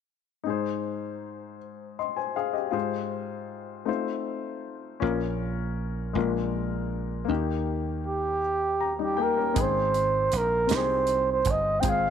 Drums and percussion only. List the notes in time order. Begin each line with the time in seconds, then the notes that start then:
9.56 kick, closed hi-hat
9.94 closed hi-hat
10.32 closed hi-hat
10.69 snare, closed hi-hat
11.07 closed hi-hat
11.45 kick, closed hi-hat
11.83 kick, closed hi-hat